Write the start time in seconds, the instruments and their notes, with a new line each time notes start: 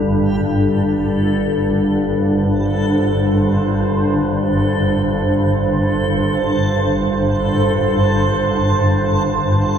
Already playing: synth drone G1 G2, analog synth pad G3 A#3 D4 A4
0.09 synth texture A4
1.88 analog synth pad C5